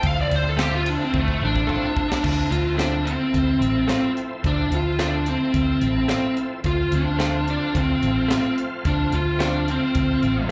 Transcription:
Already playing: F3 A3 C4 E4
0.03 D2 F5, kick, ride
0.21 D5
0.31 D2, ride
0.36 C5
0.49 A4
0.57 A3 C4 F4, snare, ride
0.63 G4
0.75 F4
0.86 D4, ride
1.04 C4
1.14 D2, kick
1.18 A3
1.28 kick
1.42 A1 D4
1.56 kick
1.67 A3 C4 F4, kick
1.97 kick
2.12 snare
2.23 D2 F3 A3 C4 D4 E4, kick, crash
2.51 D2 F4, closed hi-hat
2.77 A3 C4 D4 F4, snare, closed hi-hat
3.05 C4, closed hi-hat
3.34 D2, kick, closed hi-hat
3.61 A1, closed hi-hat
3.88 A3 C4 F4, snare, closed hi-hat
4.17 closed hi-hat
4.44 D2 D4, kick, closed hi-hat
4.71 D2 F4, closed hi-hat
4.99 A3 C4 D4 F4, snare, closed hi-hat
5.26 C4, closed hi-hat
5.54 D2, kick, closed hi-hat
5.81 A1, closed hi-hat
6.08 A3 C4 F4, snare, closed hi-hat
6.37 closed hi-hat
6.64 D2 F3 A3 C4 F4, kick, closed hi-hat
6.92 D2 D4, closed hi-hat
7.19 A3 C4 F4, snare, closed hi-hat
7.47 D4, closed hi-hat
7.75 D2 C4, kick, closed hi-hat
8.03 A1, closed hi-hat
8.28 A3 C4 F4, snare, closed hi-hat
8.58 closed hi-hat
8.85 D2 D4, kick, closed hi-hat
9.12 D2 F4, closed hi-hat
9.39 A3 C4 D4 F4, snare, closed hi-hat
9.68 C4, closed hi-hat
9.95 D2, kick, closed hi-hat
10.23 A1, closed hi-hat

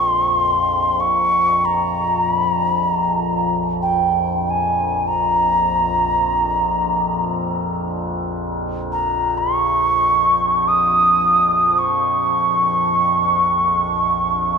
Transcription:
Already playing: A#1 F2 C#6
0.05 C6
0.25 C#6
0.37 C6
1.00 C#6
1.65 A#5
2.32 B5
2.51 A#5
2.71 B5
2.89 A#5
3.82 G5
4.50 G#5
5.07 A#5
8.92 A#5
9.38 C#6
10.68 D#6
11.79 C#6

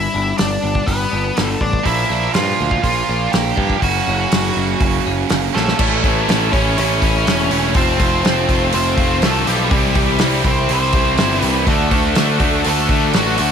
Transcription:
Already playing: G2 E4 E5
0.14 G1 D4
0.38 G1 G3 D4 D5, snare, open hi-hat
0.62 G1 B3
0.75 kick
0.86 G1 G3 B3 B4, kick, open hi-hat
1.11 G1 D4
1.36 G1 B3, snare, open hi-hat
1.43 A4
1.61 A1 G3 D4 D5, kick
1.73 kick
1.84 A#1 A#2 F3 A#3 D4 E4 E5, kick, open hi-hat
2.10 A#1 D4
2.34 G2 F3 F4 F5, snare, open hi-hat
2.59 D2 A#3
2.71 kick
2.83 A#1 F3 F4 F5, kick, open hi-hat
3.09 A#1 D4
3.32 A#1 A#3 G4 G5, snare, open hi-hat
3.56 G2 F3 A#3 D4, kick
3.60 A#2
3.70 kick
3.80 F#1 F#2 C#3 F#3 A#3 C#4 F#4 F#5, kick, open hi-hat
4.08 F#1 C#4
4.32 F#1 F#3, snare, open hi-hat
4.57 F#1 A#3
4.80 F#1 F#3, kick, open hi-hat
5.06 F#1 C#4
5.29 F#1 A#3, snare, open hi-hat
5.53 A#1 F#2 C#3 F#3 A3 A#3 C#4 A4, snare
5.68 snare
5.79 A1 A2 E3 A3 C#4 E4, kick, crash
6.03 A1 A3 C#4 E4, kick, open hi-hat
6.28 A1 E3 A3 C#4 E4, snare, open hi-hat
6.52 A1 A2 E3 A3 C#4 E4 C#5, kick, open hi-hat
6.78 A1 E3 A3 C#4 E4 C#5, open hi-hat
7.00 A1 A3 C#4 E4, kick, open hi-hat
7.25 E1 A2 E3 A3 C#4 E4, snare, open hi-hat
7.50 E1 A3 C#4 E4, open hi-hat
7.74 F1 F3 A3 C4 F4 C5, kick, open hi-hat
7.98 F1 A3 C4 F4, kick, open hi-hat
8.23 F1 F3 A3 C4 F4, snare, open hi-hat
8.49 F1 F3 A3 C4 F4, kick, open hi-hat
8.73 F1 F3 A3 C4 F4 C5, open hi-hat
8.98 F1 A3 C4 F4, kick, open hi-hat
9.22 C2 F3 A3 C4 F4 A4, snare, open hi-hat
9.47 B1 G3 A3 C4 F4 G4, open hi-hat
9.70 C2 C3 E3 G3 C4 E4, kick, open hi-hat
9.95 C2 G3 C4 E4, kick, open hi-hat
10.19 C2 E3 G3 C4 E4, snare, open hi-hat
10.44 C2 C3 E3 G3 C4 E4 C5, kick, open hi-hat
10.69 C2 E3 G3 C4 E4, open hi-hat
10.73 C5
10.93 C2 G3 C4 E4, kick, open hi-hat
11.17 G1 C3 E3 G3 C4 E4, snare, open hi-hat
11.39 C2 C4 E4 B4, open hi-hat
11.44 G3
11.67 D2 D3 A3 D4 F#4 A4, kick, open hi-hat
11.91 D2 A3 D4 F#4, kick, open hi-hat
12.15 D2 D3 A3 D4 F#4, snare, open hi-hat
12.38 D2 D3 A3 D4 F#4, kick, open hi-hat
12.64 D2 D3 A3 D4 F#4, open hi-hat
12.69 A4
12.89 D2 A3 D4 F#4, kick, open hi-hat
13.13 A1 D3 F#3 A3 D4 F#4, snare, open hi-hat
13.37 D2 A3 D4 F#4, open hi-hat
13.41 F#5

